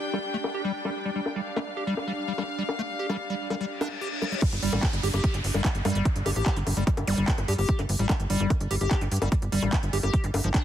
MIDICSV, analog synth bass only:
0, 0, Header, 1, 2, 480
1, 0, Start_track
1, 0, Tempo, 408163
1, 1359, Time_signature, 4, 2, 24, 8
1, 12517, End_track
2, 0, Start_track
2, 0, Title_t, "Analog synth bass"
2, 0, Program_c, 0, 38
2, 5320, Note_on_c, 0, 31, 88
2, 5402, Note_off_c, 0, 31, 0
2, 5440, Note_on_c, 0, 31, 101
2, 5522, Note_off_c, 0, 31, 0
2, 5560, Note_on_c, 0, 33, 88
2, 5642, Note_off_c, 0, 33, 0
2, 5800, Note_on_c, 0, 31, 85
2, 5882, Note_off_c, 0, 31, 0
2, 5920, Note_on_c, 0, 31, 101
2, 6002, Note_off_c, 0, 31, 0
2, 6040, Note_on_c, 0, 31, 91
2, 6122, Note_off_c, 0, 31, 0
2, 6280, Note_on_c, 0, 31, 86
2, 6362, Note_off_c, 0, 31, 0
2, 6400, Note_on_c, 0, 31, 100
2, 6482, Note_off_c, 0, 31, 0
2, 6520, Note_on_c, 0, 31, 92
2, 6602, Note_off_c, 0, 31, 0
2, 6760, Note_on_c, 0, 31, 86
2, 6842, Note_off_c, 0, 31, 0
2, 6880, Note_on_c, 0, 43, 104
2, 6962, Note_off_c, 0, 43, 0
2, 7000, Note_on_c, 0, 31, 94
2, 7082, Note_off_c, 0, 31, 0
2, 7240, Note_on_c, 0, 31, 93
2, 7322, Note_off_c, 0, 31, 0
2, 7360, Note_on_c, 0, 31, 104
2, 7442, Note_off_c, 0, 31, 0
2, 7480, Note_on_c, 0, 33, 93
2, 7562, Note_off_c, 0, 33, 0
2, 7720, Note_on_c, 0, 31, 85
2, 7802, Note_off_c, 0, 31, 0
2, 7840, Note_on_c, 0, 31, 99
2, 7922, Note_off_c, 0, 31, 0
2, 7960, Note_on_c, 0, 31, 91
2, 8042, Note_off_c, 0, 31, 0
2, 8200, Note_on_c, 0, 31, 88
2, 8282, Note_off_c, 0, 31, 0
2, 8320, Note_on_c, 0, 31, 101
2, 8402, Note_off_c, 0, 31, 0
2, 8440, Note_on_c, 0, 31, 93
2, 8522, Note_off_c, 0, 31, 0
2, 8680, Note_on_c, 0, 31, 90
2, 8762, Note_off_c, 0, 31, 0
2, 8800, Note_on_c, 0, 43, 104
2, 8882, Note_off_c, 0, 43, 0
2, 8920, Note_on_c, 0, 31, 95
2, 9002, Note_off_c, 0, 31, 0
2, 9160, Note_on_c, 0, 31, 91
2, 9242, Note_off_c, 0, 31, 0
2, 9280, Note_on_c, 0, 31, 105
2, 9362, Note_off_c, 0, 31, 0
2, 9400, Note_on_c, 0, 33, 92
2, 9482, Note_off_c, 0, 33, 0
2, 9640, Note_on_c, 0, 31, 84
2, 9722, Note_off_c, 0, 31, 0
2, 9760, Note_on_c, 0, 31, 104
2, 9842, Note_off_c, 0, 31, 0
2, 9880, Note_on_c, 0, 31, 91
2, 9962, Note_off_c, 0, 31, 0
2, 10120, Note_on_c, 0, 31, 88
2, 10202, Note_off_c, 0, 31, 0
2, 10240, Note_on_c, 0, 31, 97
2, 10322, Note_off_c, 0, 31, 0
2, 10360, Note_on_c, 0, 31, 92
2, 10442, Note_off_c, 0, 31, 0
2, 10600, Note_on_c, 0, 31, 87
2, 10682, Note_off_c, 0, 31, 0
2, 10720, Note_on_c, 0, 43, 104
2, 10802, Note_off_c, 0, 43, 0
2, 10840, Note_on_c, 0, 31, 92
2, 10922, Note_off_c, 0, 31, 0
2, 11080, Note_on_c, 0, 31, 89
2, 11162, Note_off_c, 0, 31, 0
2, 11200, Note_on_c, 0, 31, 105
2, 11282, Note_off_c, 0, 31, 0
2, 11320, Note_on_c, 0, 33, 89
2, 11402, Note_off_c, 0, 33, 0
2, 11560, Note_on_c, 0, 31, 83
2, 11642, Note_off_c, 0, 31, 0
2, 11680, Note_on_c, 0, 31, 104
2, 11762, Note_off_c, 0, 31, 0
2, 11800, Note_on_c, 0, 31, 95
2, 11882, Note_off_c, 0, 31, 0
2, 12040, Note_on_c, 0, 31, 90
2, 12122, Note_off_c, 0, 31, 0
2, 12160, Note_on_c, 0, 31, 100
2, 12242, Note_off_c, 0, 31, 0
2, 12280, Note_on_c, 0, 31, 95
2, 12362, Note_off_c, 0, 31, 0
2, 12517, End_track
0, 0, End_of_file